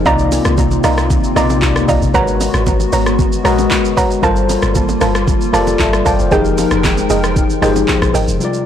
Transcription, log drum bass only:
0.06 0.40 C2 loud
0.46 0.79 C2 loud
0.84 1.18 C2 loud
1.36 1.64 A#1 loud
1.62 1.85 C2 loud
1.89 2.00 C2 medium
2.02 2.13 A#1 medium
2.14 2.49 G#1 loud
2.54 2.87 G#1 loud
2.93 3.27 G#1 loud
3.45 3.67 A#1 medium
4.23 4.57 G1 loud
4.63 4.96 G1 medium
5.01 5.36 G1 loud
5.54 5.76 F1 medium
5.80 6.02 G1 loud
6.06 6.18 G1 loud
6.19 6.30 F1 medium
6.32 6.66 F1 loud
6.72 7.05 F1 medium
7.10 7.44 F1 loud
7.62 7.85 G1 medium
8.02 8.13 A#1 medium
8.14 8.26 G#1 medium
8.28 8.39 F1 medium

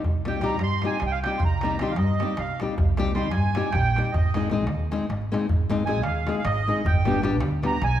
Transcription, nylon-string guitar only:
0.25 0.38 G3 medium
0.25 0.38 C4 medium
0.25 0.39 D#4 medium
0.25 0.39 G4 medium
0.42 0.55 G3 medium
0.42 0.55 C4 medium
0.42 0.55 D#4 medium
0.42 0.56 G4 medium
0.83 0.96 G3 medium
0.83 0.96 C4 medium
0.83 0.97 D#4 medium
0.83 0.97 G4 medium
1.26 1.38 G3 medium
1.26 1.38 C4 soft
1.26 1.38 D#4 medium
1.26 1.38 G4 medium
1.63 1.75 G3 medium
1.63 1.75 C4 medium
1.63 1.76 D#4 medium
1.63 1.76 G4 medium
1.81 1.92 G3 medium
1.81 1.92 C4 medium
1.81 1.93 D#4 medium
1.81 1.93 G4 medium
2.20 2.33 G3 medium
2.20 2.33 C4 medium
2.20 2.34 D#4 medium
2.20 2.34 G4 medium
2.61 2.73 G3 medium
2.61 2.74 C4 soft
2.61 2.74 D#4 medium
2.61 2.74 G4 medium
2.98 3.10 G3 medium
2.98 3.10 C4 medium
2.98 3.11 D#4 medium
2.98 3.11 G4 loud
3.15 3.27 G3 medium
3.15 3.28 C4 medium
3.15 3.28 D#4 medium
3.15 3.29 G4 medium
3.56 3.68 G3 medium
3.56 3.68 C4 soft
3.56 3.69 D#4 medium
3.56 3.69 G4 medium
3.97 4.09 G3 medium
3.97 4.10 C4 soft
3.97 4.10 D#4 soft
3.97 4.10 G4 medium
4.35 4.47 G#3 medium
4.35 4.47 C4 medium
4.35 4.47 D#4 medium
4.35 4.48 G#4 medium
4.51 4.63 G#3 medium
4.51 4.63 C4 medium
4.51 4.64 D#4 medium
4.51 4.64 G#4 medium
4.91 5.04 G#3 medium
4.91 5.04 C4 medium
4.91 5.05 D#4 medium
4.91 5.05 G#4 medium
5.32 5.45 G#3 medium
5.32 5.45 C4 medium
5.32 5.45 D#4 medium
5.32 5.46 G#4 medium
5.69 5.82 G#3 medium
5.69 5.82 C4 medium
5.69 5.83 D#4 medium
5.69 5.83 G#4 medium
5.87 5.99 G#3 medium
5.87 6.00 C4 medium
5.87 6.00 D#4 medium
5.87 6.00 G#4 medium
6.26 6.40 G#3 medium
6.26 6.40 C4 soft
6.26 6.40 D#4 medium
6.26 6.41 G#4 medium
6.67 6.80 G#3 soft
6.67 6.81 C4 medium
6.67 6.81 D#4 medium
6.67 6.81 G#4 medium
7.05 7.18 G3 medium
7.05 7.18 B3 medium
7.05 7.19 D4 medium
7.05 7.19 G4 medium
7.22 7.35 G3 medium
7.22 7.35 B3 medium
7.22 7.35 D4 medium
7.22 7.36 G4 medium
7.63 7.76 G3 medium
7.63 7.76 B3 medium
7.63 7.76 D4 medium
7.63 7.76 G4 medium

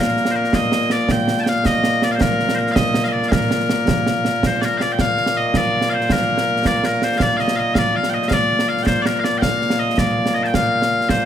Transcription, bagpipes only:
0.00 11.25 A#2 medium
0.00 11.25 A#3 medium
0.00 0.31 A#4 medium
0.31 0.35 C5 medium
0.35 0.54 A#4 medium
0.54 0.92 D#5 loud
0.92 1.11 D5 medium
1.11 1.40 G5 loud
1.40 1.49 G5 medium
1.40 1.43 A5 medium
1.49 1.66 F5 medium
1.66 2.04 D#5 loud
2.04 2.11 D5 medium
2.11 2.21 C5 medium
2.11 2.15 F5 medium
2.21 2.55 A#4 loud
2.55 2.72 A#4 medium
2.55 2.58 C5 medium
2.72 3.04 D#5 loud
2.72 2.75 F5 loud
3.04 3.08 F5 medium
3.08 3.28 D5 medium
3.08 3.12 D#5 medium
3.28 4.46 A#4 medium
3.28 3.32 F5 medium
4.46 4.61 C5 medium
4.61 4.78 A#4 medium
4.61 4.65 D5 medium
4.78 4.92 D5 medium
4.78 4.81 F5 medium
4.92 5.00 G5 medium
5.00 5.37 F5 loud
5.37 5.47 D#5 medium
5.47 5.57 D#5 medium
5.57 5.89 D5 loud
5.89 5.93 F5 medium
5.93 6.12 C5 medium
6.12 6.67 A#4 loud
6.67 6.85 D5 loud
6.85 7.04 A#4 medium
7.04 7.18 C5 medium
7.18 7.22 F5 loud
7.22 7.37 D5 loud
7.37 7.56 D#5 medium
7.37 7.40 F5 medium
7.56 7.74 D#5 medium
7.56 7.59 F5 medium
7.74 7.96 D5 loud
7.74 7.78 F5 loud
7.96 8.10 F5 medium
8.10 8.14 G5 medium
8.14 8.28 D#5 medium
8.28 8.33 F5 loud
8.33 8.68 D5 loud
8.68 8.83 F5 medium
8.83 9.02 C5 loud
8.83 8.86 G5 loud
9.02 9.06 D5 medium
9.06 9.19 A#4 medium
9.19 9.24 F5 medium
9.24 9.38 D5 medium
9.38 9.79 F5 loud
9.38 9.42 G5 loud
9.79 9.98 D#5 medium
9.98 10.34 D5 medium
10.34 10.43 D#5 medium
10.43 10.54 G5 medium
10.43 10.47 A5 medium
10.54 11.09 F5 loud
11.09 11.25 C5 medium

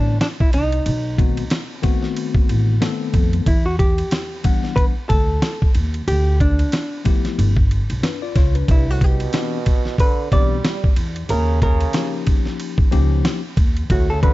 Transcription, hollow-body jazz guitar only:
0.00 0.20 D4 medium
0.21 0.26 D4 medium
0.41 0.53 E4 medium
0.54 1.79 D#4 medium
1.79 2.45 C#4 medium
3.48 3.65 E4 medium
3.66 3.79 F#4 medium
3.79 4.75 G4 medium
4.76 4.85 B4 medium
5.09 5.71 A4 loud
6.08 6.38 G4 loud
6.41 7.02 D4 medium
8.71 8.91 E4 medium
8.91 9.04 F#4 medium
9.04 10.03 G4 medium
10.00 10.32 B4 medium
10.33 10.93 D5 loud
11.30 11.62 A#4 loud
11.63 12.24 A#4 medium
13.91 14.10 F#4 medium
14.10 14.23 A4 medium
14.23 14.32 B4 medium

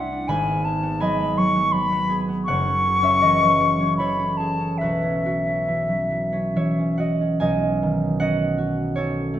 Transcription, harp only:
0.00 0.32 C2 medium
0.00 0.32 G3 soft
0.00 0.11 D4 soft
0.00 0.32 E4 soft
0.00 0.32 D5 medium
0.00 0.31 E5 soft
0.00 0.21 F#5 medium
0.00 0.32 G5 medium
0.00 0.31 C6 medium
0.12 0.32 D4 soft
0.28 2.50 G#1 medium
0.28 0.99 G#5 medium
0.28 2.50 B5 medium
0.47 0.82 B3 soft
0.66 2.08 G#4 soft
0.83 1.54 B3 soft
1.00 1.36 F#3 soft
1.00 2.50 D#5 medium
1.00 4.86 G#5 medium
1.19 1.50 G#3 soft
1.38 1.72 F#3 soft
1.55 1.91 B3 soft
1.73 3.40 F#3 soft
1.92 2.27 B3 soft
2.09 2.84 G#4 soft
2.28 2.50 B3 soft
2.48 4.87 F#1 medium
2.48 3.03 C#5 medium
2.48 6.38 F#5 medium
2.67 3.02 C#4 soft
2.85 4.39 G#4 soft
3.03 3.79 C#4 soft
3.03 3.98 C#5 medium
3.03 6.55 E5 medium
3.22 3.59 E3 soft
3.22 4.80 B4 medium
3.22 4.57 D#5 medium
3.41 3.74 F#3 soft
3.60 3.99 E3 soft
3.80 4.18 C#4 soft
4.00 4.86 E3 soft
4.00 7.90 A4 soft
4.00 6.55 C#5 medium
4.19 4.58 C#4 soft
4.40 4.86 G#4 soft
4.60 5.01 C#4 soft
4.81 7.40 B1 soft
4.81 5.25 F#4 soft
4.81 8.71 B4 medium
5.02 5.45 C#4 soft
5.26 6.98 F#4 soft
5.47 6.31 C#4 soft
5.68 6.09 E3 soft
5.89 6.27 F#3 soft
6.11 6.55 E3 soft
6.33 6.78 C#4 soft
6.56 7.45 E3 soft
6.56 8.94 C#5 soft
6.56 7.45 E5 medium
6.79 7.20 C#4 soft
6.98 8.57 F#4 soft
6.98 7.40 D#5 medium
6.98 8.19 F#5 medium
7.21 8.20 C#4 soft
7.40 9.40 B1 medium
7.40 8.20 D#5 medium
7.40 9.40 G#5 medium
7.83 9.40 D#3 soft
8.20 8.96 C#4 medium
8.20 9.40 D#5 medium
8.20 9.40 F#5 loud
8.58 9.40 F#4 soft
8.96 9.40 C#4 soft
8.96 9.40 A4 medium
8.96 9.40 C#5 medium
9.34 9.40 A3 soft

